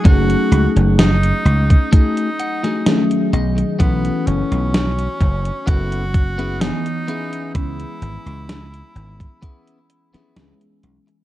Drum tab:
HH |xxxxxxxxxxxxxxxx|xxxxxxxxxxxxxxxx|xxxxxxxxxxxxxxxx|
SD |----o------oo---|----o-------o---|----o------oo---|
BD |o------oo-------|o-----o-o-o-----|o------oo-------|